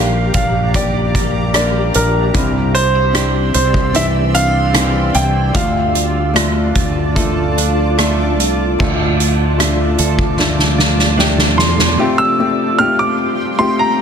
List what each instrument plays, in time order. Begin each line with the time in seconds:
Already playing: fretless electric bass A#1, felt piano A#2 F3 A#3 D4 G4, clean electric guitar A#2 A#3 D4 G4, ambient pad G4 F5 A#5 D6, grand piano F5
0.34 fretless electric bass A#1, clean electric guitar D4, grand piano F5, kick, closed hi-hat
0.74 felt piano A#3 D4 G4, clean electric guitar G4, grand piano D5, kick, closed hi-hat
1.15 clean electric guitar A#3, kick, closed hi-hat
1.54 felt piano A#3 D4 A#4, clean electric guitar G4, grand piano D5, cross-stick, closed hi-hat
1.94 fretless electric bass A#1, clean electric guitar D4, grand piano A#4, closed hi-hat
2.34 fretless electric bass C2, felt piano C3 G3 C4 D4 E4, clean electric guitar C3, ambient pad D5 C6 E6, kick, closed hi-hat
2.75 clean electric guitar D4, grand piano C5, closed hi-hat
2.95 clean electric guitar E4
3.13 felt piano C4 D4 G4, clean electric guitar D4, cross-stick, closed hi-hat
3.54 fretless electric bass C2, grand piano C5, closed hi-hat
3.74 kick
3.93 felt piano E3 C4 D4, clean electric guitar G4, grand piano E5, closed hi-hat
4.34 clean electric guitar D4, grand piano F5, closed hi-hat
4.73 felt piano E3 C4 D4, clean electric guitar G4, cross-stick, closed hi-hat
5.14 fretless electric bass C2, clean electric guitar E4, grand piano G5, closed hi-hat
5.53 fretless electric bass D2, felt piano D3 A3 D4 F4, clean electric guitar D3, ambient pad F4 D5 A5 D6, grand piano F5, kick, closed hi-hat
5.95 clean electric guitar F4, closed hi-hat
6.34 felt piano A3 D4 F4, clean electric guitar D4, cross-stick, closed hi-hat
6.75 fretless electric bass D2, clean electric guitar F4, kick, closed hi-hat
7.15 felt piano A3 D4 F4, clean electric guitar A4, kick, closed hi-hat
7.58 clean electric guitar D4, closed hi-hat
7.98 felt piano A3 D4 F4, clean electric guitar A4, cross-stick, closed hi-hat
8.40 fretless electric bass C2, clean electric guitar F4, closed hi-hat
8.79 fretless electric bass D2, felt piano A2 A3 D4 F4, clean electric guitar D3 A4, ambient pad F4 D5 A5 D6, kick, crash
9.20 clean electric guitar F4, closed hi-hat
9.58 felt piano A3 D4 F4, clean electric guitar D4, cross-stick, closed hi-hat
9.98 fretless electric bass D2, clean electric guitar A4, closed hi-hat
10.19 kick
10.38 felt piano A3 D4 F4, snare
10.59 snare
10.78 clean electric guitar F4, snare
10.99 snare
11.17 felt piano A3 D4 G4, clean electric guitar D4, snare
11.38 snare
11.57 fretless electric bass E2, clean electric guitar A4, grand piano C6, snare
11.79 snare
11.97 felt piano C3 A3 C4 F4 G4, ambient pad G4 F5 G5 C6
12.18 grand piano E6
12.39 felt piano A3 C4 F4 G4
12.78 felt piano A3 C4 F4 G4, grand piano F6
12.99 grand piano D6
13.58 felt piano A3 C4 F4 G4, grand piano C6
13.79 grand piano A#5